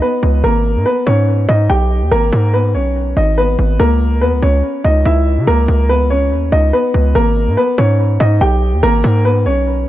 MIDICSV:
0, 0, Header, 1, 3, 480
1, 0, Start_track
1, 0, Key_signature, 5, "minor"
1, 0, Tempo, 419580
1, 501, Time_signature, 4, 2, 24, 8
1, 11311, End_track
2, 0, Start_track
2, 0, Title_t, "Grand piano"
2, 0, Program_c, 0, 0
2, 22, Note_on_c, 0, 71, 79
2, 31, Note_on_c, 0, 59, 69
2, 473, Note_off_c, 0, 71, 0
2, 478, Note_off_c, 0, 59, 0
2, 501, Note_on_c, 0, 70, 94
2, 510, Note_on_c, 0, 58, 73
2, 952, Note_off_c, 0, 70, 0
2, 957, Note_off_c, 0, 58, 0
2, 980, Note_on_c, 0, 71, 92
2, 989, Note_on_c, 0, 59, 66
2, 1207, Note_off_c, 0, 71, 0
2, 1212, Note_off_c, 0, 59, 0
2, 1218, Note_on_c, 0, 73, 84
2, 1227, Note_on_c, 0, 61, 59
2, 1671, Note_off_c, 0, 73, 0
2, 1676, Note_off_c, 0, 61, 0
2, 1700, Note_on_c, 0, 75, 82
2, 1709, Note_on_c, 0, 63, 61
2, 1927, Note_off_c, 0, 75, 0
2, 1932, Note_off_c, 0, 63, 0
2, 1940, Note_on_c, 0, 79, 83
2, 1949, Note_on_c, 0, 67, 71
2, 2392, Note_off_c, 0, 79, 0
2, 2397, Note_off_c, 0, 67, 0
2, 2419, Note_on_c, 0, 70, 112
2, 2429, Note_on_c, 0, 58, 83
2, 2872, Note_off_c, 0, 70, 0
2, 2877, Note_off_c, 0, 58, 0
2, 2902, Note_on_c, 0, 71, 88
2, 2911, Note_on_c, 0, 59, 65
2, 3128, Note_off_c, 0, 71, 0
2, 3133, Note_off_c, 0, 59, 0
2, 3141, Note_on_c, 0, 73, 81
2, 3151, Note_on_c, 0, 61, 61
2, 3593, Note_off_c, 0, 73, 0
2, 3598, Note_off_c, 0, 61, 0
2, 3624, Note_on_c, 0, 75, 84
2, 3634, Note_on_c, 0, 63, 67
2, 3849, Note_off_c, 0, 75, 0
2, 3854, Note_off_c, 0, 63, 0
2, 3863, Note_on_c, 0, 71, 93
2, 3873, Note_on_c, 0, 59, 62
2, 4313, Note_off_c, 0, 71, 0
2, 4319, Note_off_c, 0, 59, 0
2, 4343, Note_on_c, 0, 70, 93
2, 4352, Note_on_c, 0, 58, 75
2, 4793, Note_off_c, 0, 70, 0
2, 4798, Note_off_c, 0, 58, 0
2, 4821, Note_on_c, 0, 71, 88
2, 4831, Note_on_c, 0, 59, 72
2, 5047, Note_off_c, 0, 71, 0
2, 5053, Note_off_c, 0, 59, 0
2, 5063, Note_on_c, 0, 73, 78
2, 5072, Note_on_c, 0, 61, 59
2, 5514, Note_off_c, 0, 73, 0
2, 5518, Note_off_c, 0, 61, 0
2, 5542, Note_on_c, 0, 75, 83
2, 5551, Note_on_c, 0, 63, 68
2, 5768, Note_off_c, 0, 75, 0
2, 5773, Note_off_c, 0, 63, 0
2, 5781, Note_on_c, 0, 76, 91
2, 5791, Note_on_c, 0, 64, 70
2, 6233, Note_off_c, 0, 76, 0
2, 6238, Note_off_c, 0, 64, 0
2, 6262, Note_on_c, 0, 70, 100
2, 6272, Note_on_c, 0, 58, 80
2, 6713, Note_off_c, 0, 70, 0
2, 6718, Note_off_c, 0, 58, 0
2, 6742, Note_on_c, 0, 71, 87
2, 6751, Note_on_c, 0, 59, 69
2, 6968, Note_off_c, 0, 71, 0
2, 6973, Note_off_c, 0, 59, 0
2, 6982, Note_on_c, 0, 73, 78
2, 6991, Note_on_c, 0, 61, 61
2, 7433, Note_off_c, 0, 73, 0
2, 7438, Note_off_c, 0, 61, 0
2, 7462, Note_on_c, 0, 75, 80
2, 7471, Note_on_c, 0, 63, 65
2, 7688, Note_off_c, 0, 75, 0
2, 7693, Note_off_c, 0, 63, 0
2, 7701, Note_on_c, 0, 71, 82
2, 7711, Note_on_c, 0, 59, 70
2, 8153, Note_off_c, 0, 71, 0
2, 8158, Note_off_c, 0, 59, 0
2, 8182, Note_on_c, 0, 70, 102
2, 8191, Note_on_c, 0, 58, 75
2, 8633, Note_off_c, 0, 70, 0
2, 8638, Note_off_c, 0, 58, 0
2, 8663, Note_on_c, 0, 71, 91
2, 8672, Note_on_c, 0, 59, 69
2, 8889, Note_off_c, 0, 71, 0
2, 8894, Note_off_c, 0, 59, 0
2, 8902, Note_on_c, 0, 73, 86
2, 8911, Note_on_c, 0, 61, 58
2, 9353, Note_off_c, 0, 73, 0
2, 9358, Note_off_c, 0, 61, 0
2, 9383, Note_on_c, 0, 75, 85
2, 9391, Note_on_c, 0, 63, 64
2, 9609, Note_off_c, 0, 75, 0
2, 9613, Note_off_c, 0, 63, 0
2, 9622, Note_on_c, 0, 79, 89
2, 9631, Note_on_c, 0, 67, 74
2, 10073, Note_off_c, 0, 79, 0
2, 10078, Note_off_c, 0, 67, 0
2, 10101, Note_on_c, 0, 70, 114
2, 10110, Note_on_c, 0, 58, 87
2, 10552, Note_off_c, 0, 70, 0
2, 10557, Note_off_c, 0, 58, 0
2, 10582, Note_on_c, 0, 71, 87
2, 10591, Note_on_c, 0, 59, 67
2, 10808, Note_off_c, 0, 71, 0
2, 10813, Note_off_c, 0, 59, 0
2, 10821, Note_on_c, 0, 73, 85
2, 10831, Note_on_c, 0, 61, 61
2, 11273, Note_off_c, 0, 73, 0
2, 11278, Note_off_c, 0, 61, 0
2, 11311, End_track
3, 0, Start_track
3, 0, Title_t, "808-style bass"
3, 0, Program_c, 1, 38
3, 261, Note_on_c, 1, 37, 101
3, 492, Note_off_c, 1, 37, 0
3, 501, Note_on_c, 1, 32, 108
3, 869, Note_on_c, 1, 44, 105
3, 886, Note_off_c, 1, 32, 0
3, 976, Note_off_c, 1, 44, 0
3, 1221, Note_on_c, 1, 44, 102
3, 1682, Note_off_c, 1, 44, 0
3, 1700, Note_on_c, 1, 44, 104
3, 1931, Note_off_c, 1, 44, 0
3, 1941, Note_on_c, 1, 35, 108
3, 2309, Note_on_c, 1, 39, 102
3, 2326, Note_off_c, 1, 35, 0
3, 2413, Note_off_c, 1, 39, 0
3, 2420, Note_on_c, 1, 32, 112
3, 2651, Note_off_c, 1, 32, 0
3, 2660, Note_on_c, 1, 44, 111
3, 3142, Note_on_c, 1, 35, 95
3, 3159, Note_off_c, 1, 44, 0
3, 3598, Note_off_c, 1, 35, 0
3, 3622, Note_on_c, 1, 32, 101
3, 4083, Note_off_c, 1, 32, 0
3, 4103, Note_on_c, 1, 32, 105
3, 4333, Note_off_c, 1, 32, 0
3, 4342, Note_on_c, 1, 37, 106
3, 4822, Note_on_c, 1, 39, 103
3, 4839, Note_off_c, 1, 37, 0
3, 4950, Note_on_c, 1, 37, 97
3, 4967, Note_off_c, 1, 39, 0
3, 5056, Note_off_c, 1, 37, 0
3, 5062, Note_on_c, 1, 37, 99
3, 5292, Note_off_c, 1, 37, 0
3, 5542, Note_on_c, 1, 37, 104
3, 5772, Note_off_c, 1, 37, 0
3, 5782, Note_on_c, 1, 37, 107
3, 6150, Note_on_c, 1, 49, 104
3, 6167, Note_off_c, 1, 37, 0
3, 6256, Note_off_c, 1, 49, 0
3, 6261, Note_on_c, 1, 37, 111
3, 6492, Note_off_c, 1, 37, 0
3, 6501, Note_on_c, 1, 37, 107
3, 7221, Note_on_c, 1, 39, 100
3, 7239, Note_off_c, 1, 37, 0
3, 7450, Note_off_c, 1, 39, 0
3, 7461, Note_on_c, 1, 37, 105
3, 7692, Note_off_c, 1, 37, 0
3, 7942, Note_on_c, 1, 37, 101
3, 8172, Note_off_c, 1, 37, 0
3, 8182, Note_on_c, 1, 32, 107
3, 8551, Note_on_c, 1, 44, 103
3, 8568, Note_off_c, 1, 32, 0
3, 8657, Note_off_c, 1, 44, 0
3, 8902, Note_on_c, 1, 44, 102
3, 9363, Note_off_c, 1, 44, 0
3, 9382, Note_on_c, 1, 44, 108
3, 9612, Note_off_c, 1, 44, 0
3, 9622, Note_on_c, 1, 35, 107
3, 9989, Note_on_c, 1, 39, 106
3, 10006, Note_off_c, 1, 35, 0
3, 10096, Note_off_c, 1, 39, 0
3, 10102, Note_on_c, 1, 32, 110
3, 10332, Note_off_c, 1, 32, 0
3, 10341, Note_on_c, 1, 44, 109
3, 10821, Note_on_c, 1, 35, 99
3, 10838, Note_off_c, 1, 44, 0
3, 11277, Note_off_c, 1, 35, 0
3, 11311, End_track
0, 0, End_of_file